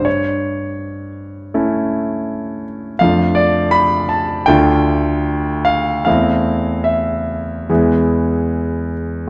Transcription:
X:1
M:4/4
L:1/8
Q:1/4=80
K:Ddor
V:1 name="Grand piano"
^c6- c z | f d b a g3 f | f2 e4- e z |]
V:2 name="Grand piano"
G,,4 [A,^CE]4 | [F,,A,DF]4 [D,,A,DF]4 | [E,,A,CE]4 [E,,^G,B,E]4 |]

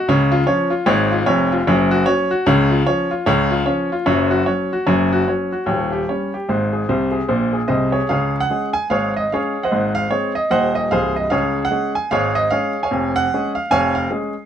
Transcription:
X:1
M:4/4
L:1/16
Q:"Swing" 1/4=149
K:Db
V:1 name="Grand piano"
d2 F2 d2 F2 d2 F2 d2 F2 | d2 G2 d2 G2 d2 F2 d2 F2 | d2 F2 d2 F2 d2 G2 d2 G2 | d2 G2 d2 G2 d2 =G2 d2 G2 |
c2 A2 c2 A2 c2 A2 [Ace]2 [Ad]2 | [Adf]3 g3 a2 [Adf]2 e2 [Adf]3 [ceg]- | [ceg]2 f2 d2 e2 [ceg]2 e2 [Acf]2 e2 | [Adf]3 g3 a2 [Adf]2 e2 [Adf]3 [dfa]- |
[dfa]2 g4 f2 [dfa]2 f2 z4 |]
V:2 name="Grand piano" clef=bass
[D,,D,]4 [F,D]4 [A,,,A,,]4 [F,,,F,,]4 | [G,,,G,,]4 [G,D]4 [D,,D,]4 [F,D]4 | [D,,D,]4 [F,D]4 [G,,,G,,]4 [G,D]4 | [G,,,G,,]4 [G,D]4 [E,,,E,,]4 [=G,D]4 |
[A,,,A,,]4 [C,,C,]4 [B,,,B,,]4 [C,,C,]4 | [D,,D,]4 [A,DA]4 [A,,,A,,]4 [A,D]4 | [A,,,A,,]4 [A,CA]4 [E,,,E,,]4 [C,,,C,,]4 | [D,,D,]4 [A,DA]4 [A,,,A,,]4 [A,D]4 |
[F,,,F,,]4 [A,DA]4 [F,,,F,,]4 [A,DA]4 |]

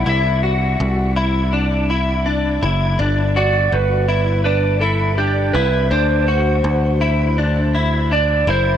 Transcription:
X:1
M:4/4
L:1/8
Q:1/4=82
K:G
V:1 name="Electric slide guitar"
e4 z4 | z d B2 B A G B | c6 d c |]
V:2 name="Clean electric guitar"
E F2 E D E D E | D F2 E D E D E | D F2 E D E D E |]
V:3 name="Picked electric bass" clef=bass
C,,2 C,,4- C,, F,,, | G,,,2 G,,,4- G,,, C,, | D,,2 D,,4- D,, F,,, |]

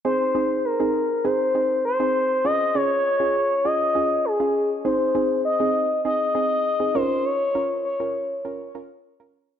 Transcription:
X:1
M:4/4
L:1/16
Q:1/4=100
K:Ab
V:1 name="Analog synth lead"
c4 B4 c4 c4 | e2 d6 e4 A3 z | c4 e4 e6 c2 | d4 d6 z6 |]
V:2 name="Synth pluck"
[CEA] z [CEA]2 z [CEA]2 z [CEA] z [CEA]2 z [CEA]2 z | [DFA] z [DFA]2 z [DFA]2 z [DFA] z [DFA]2 z [DFA]2 z | [CEA] z [CEA]2 z [CEA]2 z [CEA] z [CEA]2 z [CEA] [DFB]2- | [DFB] z [DFB]2 z [DFB]2 z [DFB] z [DFB]2 z [DFB]2 z |]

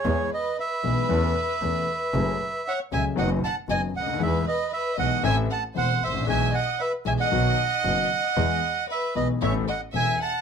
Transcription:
X:1
M:4/4
L:1/16
Q:1/4=115
K:E
V:1 name="Bandoneon"
c2 d2 e12- | e4 f2 g2 f2 a2 g2 f2 | e2 d2 e2 f2 g2 a2 f2 e2 | g2 f2 e2 g f8- f- |
f4 e2 d2 e2 f2 g2 a2 |]
V:2 name="Violin section"
G2 B2 B12- | B4 c2 e2 d2 f2 d2 d2 | B2 B2 B2 d2 e2 f2 =c2 c2 | e2 d2 B2 e d8- d- |
d4 B2 B2 c2 d2 e2 f2 |]
V:3 name="Grand piano" clef=bass
[E,,E,G,B,G]2 z4 [B,,,B,,E,G,B,G]2 [E,,E,A,CA]2 z2 [E,,E,A,CA]2 z2 | [F,,F,A,CG]2 z4 [C,,C,F,A,CG]2 [F,,D,F,B,CF]2 z2 [F,,D,F,B,CF]2 z/2 C,,/2 =D,,/2 ^D,,/2 | [E,,E,G,B,G]2 z4 [B,,,B,,E,G,B,G]2 [A,,,A,,E,A,=CA]2 z2 [E,,,E,,E,A,CA]2 z/2 G,,,/2 A,,,/2 ^A,,,/2 | [B,,,B,,E,G,B,G]2 z4 [B,,,B,,E,G,B,G]2 [B,,,B,,D,F,B,F]2 z2 [F,,,F,,D,F,B,F]2 z2 |
[E,,E,G,B,G]2 z4 [B,,,B,,E,G,B,G]2 [A,,,A,,E,B,CA]2 z2 [E,,,E,,E,B,CA]2 z2 |]
V:4 name="Double bass" clef=bass
E,,2 z4 B,,,2 E,,2 z2 E,,2 z2 | F,,,2 z4 C,,2 F,,,2 z2 F,,,2 =D,,2 | E,,2 z4 B,,,2 A,,,2 z2 E,,,2 A,,,2 | B,,,2 z4 B,,,2 B,,,2 z2 F,,,2 z2 |
E,,2 z4 B,,,2 A,,,2 z2 E,,,2 z2 |]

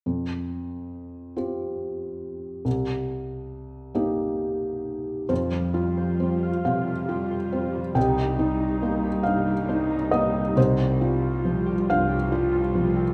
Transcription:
X:1
M:6/8
L:1/16
Q:3/8=46
K:Cm
V:1 name="Harp"
z12 | z12 | F, G, F c G f G f G c F G, | C, C G, E c G c G c E G, C |
C, C G, F c G c G c F G, C |]
V:2 name="Felt piano"
z12 | z12 | c6 f6 | g6 f4 e2 |
c6 f6 |]
V:3 name="Felt piano"
F,,6 [CFG]6 | C,,6 [B,EG]6 | F,,2 F2 C2 C,2 F2 C2 | C,,2 E2 B,2 G,,2 E2 B,2 |
C,,2 F2 F,2 G,,2 F2 F,2 |]
V:4 name="Viola section"
z12 | z12 | z2 [G,F]6 [G,F]4 | [G,E]2 [G,E]6 [G,E]4 |
z2 [G,F]6 [G,F]4 |]
V:5 name="Cello section" clef=bass
z12 | z12 | F,,6 F,,6 | C,,6 C,,6 |
C,,6 C,,6 |]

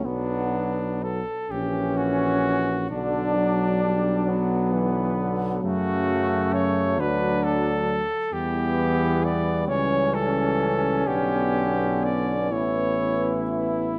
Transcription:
X:1
M:6/8
L:1/8
Q:3/8=44
K:Bm
V:1 name="Cornet"
D2 A G F2 | D4- D z | F2 c B A2 | G2 d c A2 |
G2 d c2 E |]
V:2 name="Flugelhorn"
B,2 z C3 | D3 B,3 | A,3 D2 z | B,3 C3- |
C3 E3 |]
V:3 name="Euphonium"
B,2 z C3 | F,6- | F,4- F, z | G,6 |
B,6 |]
V:4 name="Trombone" clef=bass
F,2 z E,3 | D, F, G, F, E, D, | C,3 F,2 z | E,3 E,3 |
D,3 E,3 |]
V:5 name="Tuba" clef=bass
B,,,2 z ^A,,,3 | B,,,6 | F,,3 D,,2 z | E,,3 C,,3 |
B,,,3 A,,,3 |]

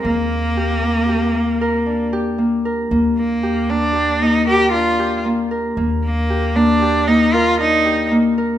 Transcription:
X:1
M:11/8
L:1/8
Q:1/4=115
K:Eb
V:1 name="Harp"
B,2 G B, G B, B D G B, B | B,2 G B, G B, B D G B, B | B,2 G B, G B, B D G B, B |]
V:2 name="Cello"
B,8 z3 | z B,2 D2 E G F2 z2 | z B,2 D2 E F E2 z2 |]
V:3 name="Upright bass" clef=bass
E,,8- E,,3 | E,,8- E,,3 | E,,8- E,,3 |]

